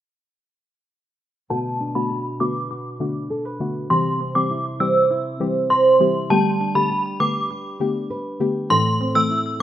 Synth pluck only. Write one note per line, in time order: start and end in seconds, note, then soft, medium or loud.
1.50 1.91 D3 medium
1.50 1.92 A3 medium
1.50 1.92 B3 medium
1.50 1.92 F#4 loud
1.95 2.10 D3 medium
1.95 2.10 A3 medium
1.95 2.10 B3 medium
1.95 2.10 F#4 medium
2.40 2.55 D3 medium
2.40 2.55 A3 medium
2.40 2.55 B3 medium
2.40 2.55 F#4 medium
3.00 3.15 D3 medium
3.00 3.15 A3 medium
3.00 3.15 B3 medium
3.00 3.15 F#4 medium
3.60 3.88 D3 medium
3.60 3.88 A3 medium
3.60 3.88 B3 medium
3.60 3.88 F#4 medium
3.90 4.32 E3 medium
3.90 4.32 G3 medium
3.90 4.32 C4 medium
3.90 4.32 G4 loud
4.35 4.50 E3 medium
4.35 4.50 G3 medium
4.35 4.50 C4 medium
4.35 4.50 G4 medium
4.80 4.95 E3 medium
4.80 4.95 G3 medium
4.80 4.95 C4 medium
4.80 4.95 G4 medium
5.40 5.55 E3 medium
5.40 5.55 G3 medium
5.40 5.55 C4 medium
5.40 5.55 G4 medium
6.00 6.28 E3 medium
6.00 6.28 G3 medium
6.00 6.28 C4 medium
6.00 6.28 G4 medium
6.30 6.71 D3 medium
6.30 6.72 A3 medium
6.30 6.72 B3 medium
6.30 6.72 G4 loud
6.75 6.90 D3 medium
6.75 6.90 A3 medium
6.75 6.90 B3 medium
6.75 6.90 G4 medium
7.20 7.35 D3 medium
7.20 7.35 A3 medium
7.20 7.35 B3 medium
7.20 7.35 G4 medium
7.80 7.95 D3 medium
7.80 7.95 A3 medium
7.80 7.95 B3 medium
7.80 7.95 G4 medium
8.40 8.68 D3 medium
8.40 8.68 A3 medium
8.40 8.68 B3 medium
8.40 8.68 G4 medium
8.70 9.12 E3 medium
8.70 9.12 A3 medium
8.70 9.12 C4 medium
8.70 9.12 A4 loud
9.15 9.30 E3 medium
9.15 9.30 A3 medium
9.15 9.30 C4 medium
9.15 9.30 A4 medium